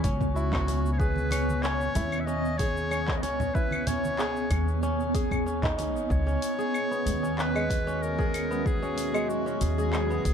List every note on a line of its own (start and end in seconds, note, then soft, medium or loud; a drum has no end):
0.00 10.34 B3 medium
0.00 0.68 C#4 loud
0.00 0.33 E4 medium
0.00 0.76 G#4 loud
0.04 1.89 C#2 medium
0.04 kick loud
0.04 open hi-hat medium
0.04 shaker medium
0.21 kick medium
0.21 low conga medium
0.21 shaker soft
0.34 1.92 E4 medium
0.34 0.88 F#4 loud
0.34 shaker soft
0.53 kick loud
0.53 clap medium
0.53 muted conga soft
0.53 low conga medium
0.53 claves medium
0.53 shaker soft
0.68 1.31 C#4 medium
0.68 open hi-hat medium
0.68 muted conga medium
0.68 high conga soft
0.68 shaker medium
0.86 shaker soft
0.93 1.00 C#5 medium
0.98 2.36 G#4 loud
0.98 1.64 B4 loud
0.98 kick loud
0.98 shaker soft
1.16 high conga medium
1.16 shaker soft
1.31 1.63 C#4 loud
1.31 open hi-hat loud
1.31 muted conga medium
1.31 claves medium
1.31 shaker medium
1.49 high conga medium
1.49 shaker soft
1.62 2.27 C#4 loud
1.62 2.22 C#5 loud
1.62 clap medium
1.62 shaker soft
1.81 shaker soft
1.95 3.23 D#2 medium
1.95 3.52 E4 medium
1.95 open hi-hat medium
1.95 muted conga medium
1.95 shaker medium
2.12 claves medium
2.12 shaker soft
2.20 2.27 E5 medium
2.26 2.91 C#4 medium
2.26 2.59 D#5 loud
2.26 shaker soft
2.45 shaker soft
2.57 3.96 G#4 loud
2.57 3.16 C#5 loud
2.57 kick loud
2.57 open hi-hat medium
2.57 low conga medium
2.57 shaker medium
2.77 shaker soft
2.91 3.23 C#4 medium
2.91 claves medium
2.91 shaker soft
3.08 kick loud
3.08 clap medium
3.08 shaker soft
3.17 3.23 D#5 medium
3.22 4.45 C#2 loud
3.22 3.86 C#4 loud
3.22 3.56 C#5 loud
3.22 open hi-hat loud
3.22 muted conga medium
3.22 shaker medium
3.40 low conga medium
3.40 shaker soft
3.54 5.11 E4 medium
3.54 3.88 B4 loud
3.54 kick loud
3.54 shaker soft
3.71 high conga medium
3.71 claves medium
3.71 shaker soft
3.87 4.50 C#4 medium
3.87 4.83 C#5 loud
3.87 open hi-hat medium
3.87 muted conga medium
3.87 low conga medium
3.87 shaker medium
4.05 high conga medium
4.05 shaker soft
4.19 5.14 G#4 loud
4.19 clap medium
4.19 shaker soft
4.36 shaker soft
4.51 5.95 D#2 loud
4.51 4.82 C#4 loud
4.51 kick medium
4.51 open hi-hat loud
4.51 muted conga medium
4.51 claves medium
4.51 shaker medium
4.68 shaker soft
4.83 5.46 C#4 loud
4.83 shaker soft
5.00 shaker soft
5.14 6.51 G#4 loud
5.14 kick loud
5.14 open hi-hat medium
5.14 shaker medium
5.31 kick medium
5.31 low conga medium
5.31 claves medium
5.31 shaker soft
5.46 5.78 C#4 medium
5.46 shaker soft
5.63 7.25 D#4 loud
5.63 kick loud
5.63 clap medium
5.63 muted conga soft
5.63 low conga loud
5.63 shaker soft
5.78 6.26 C#4 loud
5.78 open hi-hat medium
5.78 muted conga medium
5.78 high conga soft
5.78 shaker medium
5.95 6.06 G#1 medium
5.95 shaker soft
6.10 6.34 C#2 loud
6.10 10.34 G#3 medium
6.10 7.34 C#5 loud
6.10 kick loud
6.10 shaker soft
6.17 10.34 C#4 medium
6.27 7.22 C#4 loud
6.27 shaker soft
6.42 open hi-hat medium
6.42 shaker medium
6.59 10.34 F#4 medium
6.59 7.95 G#4 loud
6.59 10.34 E5 medium
6.59 shaker soft
6.74 claves medium
6.74 shaker soft
6.91 8.50 B3 medium
6.91 shaker soft
7.06 9.55 D#2 medium
7.06 open hi-hat medium
7.06 shaker medium
7.23 7.87 C#4 medium
7.23 shaker soft
7.39 8.04 B4 loud
7.39 clap medium
7.39 shaker soft
7.55 9.13 G#3 medium
7.55 claves medium
7.55 shaker soft
7.70 kick loud
7.70 open hi-hat medium
7.70 shaker medium
7.87 8.82 C#4 loud
7.87 shaker soft
8.02 8.68 A#4 medium
8.02 shaker soft
8.18 9.55 G#4 loud
8.18 kick loud
8.18 shaker soft
8.34 open hi-hat medium
8.34 claves medium
8.34 shaker medium
8.51 10.10 B3 medium
8.51 shaker soft
8.66 9.31 G#4 loud
8.66 kick loud
8.66 shaker soft
8.82 9.46 C#4 medium
8.82 shaker soft
8.98 open hi-hat medium
8.98 shaker medium
9.14 10.34 G#3 medium
9.14 claves medium
9.14 shaker soft
9.29 9.61 F#4 medium
9.29 shaker soft
9.46 10.34 C#4 medium
9.46 shaker soft
9.61 10.19 D#2 medium
9.61 10.34 G#4 loud
9.61 open hi-hat medium
9.61 shaker medium
9.78 10.34 G#4 loud
9.78 shaker soft
9.93 clap medium
9.93 claves medium
9.93 shaker soft
10.10 10.34 B3 medium
10.10 shaker soft
10.25 10.34 C#2 medium
10.25 kick loud
10.25 open hi-hat medium
10.25 shaker medium